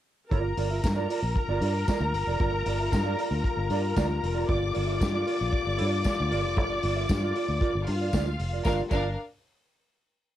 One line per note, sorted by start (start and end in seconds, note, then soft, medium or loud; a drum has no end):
0.30 0.54 G1 medium
0.30 8.48 D3 medium
0.30 8.48 G3 medium
0.30 8.48 A#3 medium
0.30 0.51 F4 medium
0.30 8.48 F4 medium
0.30 4.44 A#4 medium
0.30 0.44 A#4 medium
0.30 0.43 D5 medium
0.30 4.44 A#5 loud
0.30 kick loud
0.30 closed hi-hat medium
0.44 muted clean electric guitar stroke soft
0.57 0.79 G1 medium
0.57 0.68 F4 medium
0.57 0.69 A#4 medium
0.57 0.69 D5 medium
0.57 open hi-hat medium
0.71 0.82 F4 soft
0.71 0.82 A#4 soft
0.71 0.82 E5 medium
0.83 1.06 G2 medium
0.83 muted clean electric guitar stroke soft
0.83 kick medium
0.83 snare loud
0.83 closed hi-hat medium
0.83 tambourine loud
0.96 1.08 F4 medium
0.96 1.09 A#4 medium
0.96 1.09 D5 medium
1.09 1.20 F4 medium
1.09 1.21 A#4 medium
1.09 1.21 D5 medium
1.09 open hi-hat medium
1.22 1.34 A#1 medium
1.36 muted clean electric guitar stroke soft
1.36 kick loud
1.36 closed hi-hat medium
1.48 1.60 G1 medium
1.48 1.60 F4 medium
1.48 1.61 A#4 medium
1.48 1.62 D5 medium
1.61 1.84 G2 loud
1.61 1.73 F4 medium
1.61 1.73 A#4 medium
1.61 1.73 D5 medium
1.61 open hi-hat medium
1.88 2.02 F4 medium
1.88 2.01 A#4 medium
1.88 2.00 D5 medium
1.88 kick loud
1.88 snare loud
1.88 closed hi-hat medium
1.88 tambourine medium
2.00 2.12 D2 loud
2.00 muted clean electric guitar stroke soft
2.13 2.24 G1 medium
2.13 muted clean electric guitar stroke soft
2.13 open hi-hat medium
2.27 2.38 F1 medium
2.27 2.39 F4 medium
2.27 2.38 A#4 medium
2.27 2.38 D5 medium
2.40 2.62 G1 loud
2.40 2.54 F4 medium
2.40 2.53 A#4 medium
2.40 2.53 D5 medium
2.40 kick loud
2.40 closed hi-hat medium
2.54 muted clean electric guitar stroke soft
2.66 2.88 G1 loud
2.66 2.77 F4 medium
2.66 2.78 A#4 medium
2.66 2.78 D5 medium
2.66 open hi-hat medium
2.80 2.91 F4 medium
2.80 2.91 A#4 soft
2.80 2.90 E5 soft
2.92 3.14 G2 loud
2.92 kick medium
2.92 snare loud
2.92 closed hi-hat medium
2.92 tambourine loud
3.06 3.17 F4 medium
3.06 3.18 A#4 medium
3.06 3.19 D5 medium
3.19 3.29 F4 medium
3.19 3.30 A#4 medium
3.19 3.30 D5 medium
3.19 open hi-hat medium
3.31 3.42 D2 medium
3.31 muted clean electric guitar stroke soft
3.44 muted clean electric guitar stroke soft
3.44 kick loud
3.44 closed hi-hat medium
3.57 3.68 G1 medium
3.57 muted clean electric guitar stroke soft
3.70 3.92 G2 medium
3.70 3.85 F4 medium
3.70 3.83 A#4 medium
3.70 3.83 D5 loud
3.70 open hi-hat medium
3.84 muted clean electric guitar stroke soft
3.96 4.19 D2 loud
3.96 4.10 F4 medium
3.96 4.09 A#4 medium
3.96 4.08 D5 loud
3.96 kick loud
3.96 snare loud
3.96 closed hi-hat medium
3.96 tambourine medium
4.09 muted clean electric guitar stroke soft
4.22 4.45 F1 medium
4.22 muted clean electric guitar stroke soft
4.22 open hi-hat medium
4.35 4.47 F4 medium
4.35 4.47 A#4 medium
4.35 4.46 D5 medium
4.48 4.71 G1 loud
4.48 4.62 F4 medium
4.48 4.60 A#4 medium
4.48 7.83 D5 medium
4.48 4.60 D5 medium
4.48 7.83 D6 loud
4.48 kick loud
4.48 closed hi-hat medium
4.61 muted clean electric guitar stroke soft
4.74 4.98 G1 medium
4.74 4.85 F4 soft
4.74 4.85 A#4 medium
4.74 4.86 D5 medium
4.74 open hi-hat medium
4.86 4.99 F4 medium
4.86 4.98 A#4 medium
4.86 4.98 E5 medium
5.00 5.23 G2 medium
5.00 muted clean electric guitar stroke soft
5.00 kick medium
5.00 snare loud
5.00 closed hi-hat medium
5.00 tambourine loud
5.13 5.25 F4 medium
5.13 5.26 A#4 medium
5.13 5.26 D5 medium
5.26 5.37 F4 medium
5.26 5.38 A#4 medium
5.26 5.38 D5 medium
5.26 open hi-hat medium
5.39 5.51 A#1 medium
5.39 muted clean electric guitar stroke soft
5.52 muted clean electric guitar stroke soft
5.52 kick loud
5.52 closed hi-hat medium
5.66 5.77 G1 medium
5.66 muted clean electric guitar stroke soft
5.78 6.02 G2 loud
5.78 5.99 F4 medium
5.78 5.92 A#4 medium
5.78 5.91 D5 medium
5.78 open hi-hat medium
5.92 muted clean electric guitar stroke medium
6.04 kick loud
6.04 snare loud
6.04 closed hi-hat medium
6.04 tambourine medium
6.19 6.30 D2 medium
6.19 muted clean electric guitar stroke medium
6.31 6.46 G1 medium
6.31 6.45 F4 medium
6.31 6.43 A#4 medium
6.31 6.42 D5 medium
6.31 open hi-hat medium
6.46 6.57 F1 medium
6.56 6.79 G1 loud
6.56 6.77 F4 medium
6.56 6.69 A#4 medium
6.56 6.68 D5 medium
6.56 kick loud
6.56 closed hi-hat medium
6.69 muted clean electric guitar stroke soft
6.82 7.05 G1 medium
6.82 6.94 F4 medium
6.82 6.94 A#4 medium
6.82 6.94 D5 medium
6.82 open hi-hat medium
6.96 7.08 F4 soft
6.96 7.07 A#4 soft
6.96 7.07 E5 medium
7.09 7.31 G2 loud
7.09 kick loud
7.09 snare loud
7.09 closed hi-hat medium
7.09 tambourine loud
7.22 7.34 F4 medium
7.22 7.35 A#4 medium
7.22 7.35 D5 medium
7.35 7.46 F4 medium
7.35 7.47 A#4 medium
7.35 7.47 D5 medium
7.35 open hi-hat medium
7.48 7.59 D2 medium
7.48 muted clean electric guitar stroke soft
7.61 7.75 F4 medium
7.61 7.74 A#4 medium
7.61 7.73 D5 medium
7.61 kick loud
7.61 closed hi-hat medium
7.74 7.86 G1 medium
7.74 muted clean electric guitar stroke medium
7.87 8.10 G2 medium
7.87 8.64 F4 medium
7.87 8.63 F5 medium
7.87 muted clean electric guitar stroke medium
7.87 open hi-hat medium
8.01 8.13 F4 soft
8.01 8.12 A#4 medium
8.01 8.12 D5 medium
8.13 8.36 D2 medium
8.13 8.28 F4 medium
8.13 8.27 A#4 medium
8.13 8.26 D5 loud
8.13 kick loud
8.13 snare loud
8.13 closed hi-hat medium
8.13 tambourine loud
8.28 muted clean electric guitar stroke soft
8.40 8.61 F1 medium
8.40 muted clean electric guitar stroke soft
8.40 open hi-hat medium
8.53 8.64 F4 medium
8.53 8.64 A#4 medium
8.53 8.64 D5 soft
8.65 8.80 G1 medium
8.65 8.90 D3 medium
8.65 8.90 G3 medium
8.65 8.90 A#3 medium
8.65 8.80 D4 medium
8.65 8.81 F4 medium
8.65 8.90 F4 medium
8.65 8.80 A#4 medium
8.65 8.82 A#4 medium
8.65 8.82 D5 medium
8.65 8.80 F5 loud
8.65 kick loud
8.65 snare medium
8.65 tambourine medium
8.91 9.15 G1 medium
8.91 9.15 D4 loud
8.91 9.07 F4 medium
8.91 9.15 A#4 loud
8.91 9.07 A#4 medium
8.91 9.07 D5 medium
8.91 9.15 F5 loud
8.91 kick loud
8.91 crash medium
8.91 tambourine medium